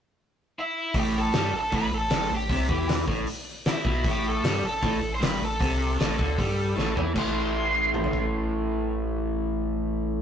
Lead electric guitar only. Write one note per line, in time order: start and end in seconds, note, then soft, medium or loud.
0.59 0.94 E4 medium
0.59 0.94 E5 medium
0.98 1.14 G4 medium
0.98 1.17 G5 medium
1.18 1.52 A4 medium
1.18 1.57 A5 loud
1.56 1.73 A4 medium
1.56 1.76 A5 loud
1.74 1.92 B4 medium
1.74 1.93 B5 loud
1.94 2.29 A4 medium
1.94 2.35 A5 medium
2.34 2.87 G4 medium
2.34 2.88 G5 medium
3.69 4.04 E4 medium
3.69 4.09 E5 medium
4.08 4.25 G4 medium
4.08 4.26 G5 medium
4.28 4.63 A4 medium
4.28 4.67 A5 loud
4.67 5.11 A4 medium
4.67 5.11 A5 loud
5.15 5.22 C5 medium
5.15 5.25 C6 loud
5.25 5.42 B4 medium
5.25 5.45 B5 medium
5.45 6.94 A4 medium
5.45 6.98 A5 medium
7.19 10.22 C6 medium